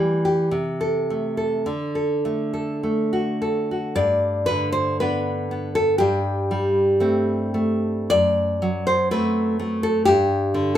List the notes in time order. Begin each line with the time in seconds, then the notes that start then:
Already playing: E3 G3 G4
0.25 G4
0.51 C3
0.81 A4
1.10 A3
1.37 A4
1.66 D3
1.95 A4
2.25 A3
2.54 A4
2.83 A3
3.13 F#4
3.42 A4
3.71 F#4
3.95 G2 D5
4.46 D3 B4
4.72 C5
5.00 B3 D4 B4
5.51 B3
5.75 A4
5.98 G2 G4
6.51 G3
7.00 A3 C4
7.54 A3
8.10 F#2 D5
8.62 F#3
8.87 C5
9.11 A3 C4 B4
9.59 A3
9.83 A4
10.05 G2 G4
10.54 D3